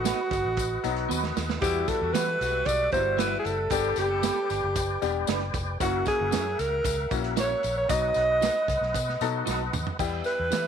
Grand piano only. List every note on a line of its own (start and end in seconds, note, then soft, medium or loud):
0.84 1.25 F#3 medium
0.84 1.25 B3 medium
0.84 1.25 D#4 medium
0.84 1.25 F#4 medium
1.62 2.17 G3 medium
1.62 2.18 B3 medium
1.62 2.18 E4 medium
1.62 2.18 F#4 medium
2.93 2.99 F#3 medium
2.93 3.34 B3 medium
2.93 3.35 E4 medium
2.93 3.35 F#4 medium
2.99 3.38 G3 medium
3.71 4.27 G3 medium
3.71 4.27 B3 medium
3.71 4.27 D4 medium
3.71 4.27 G4 medium
5.02 5.43 G3 medium
5.02 5.43 B3 medium
5.02 5.44 D4 medium
5.02 5.44 G4 medium
5.80 6.36 A#3 medium
5.80 6.36 C#4 medium
5.80 6.36 E4 medium
5.80 6.36 F#4 medium
7.11 7.53 A#3 medium
7.11 7.53 C#4 medium
7.11 7.53 E4 medium
7.11 7.53 F#4 medium
7.88 8.44 F#3 medium
7.88 8.45 B3 medium
7.88 8.45 D#4 medium
7.88 8.45 F#4 medium
9.21 9.63 F#3 medium
9.21 9.63 B3 medium
9.21 9.63 D#4 medium
9.21 9.63 A4 loud
9.99 10.55 G3 medium
9.99 10.55 B3 medium
9.99 10.55 E4 medium
9.99 10.55 G4 medium